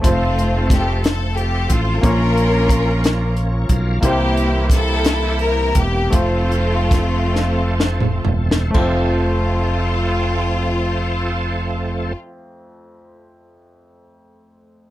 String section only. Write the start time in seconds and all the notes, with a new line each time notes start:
0.05 A3 C4 F4
0.70 G4
1.03 A4
1.36 G4
1.69 F4
2.03 C#4 F4 A#4
4.04 A#3 E4 G4
4.72 E4 A4
5.42 A#4
5.78 G4
6.15 A3 C4 F4
8.76 F4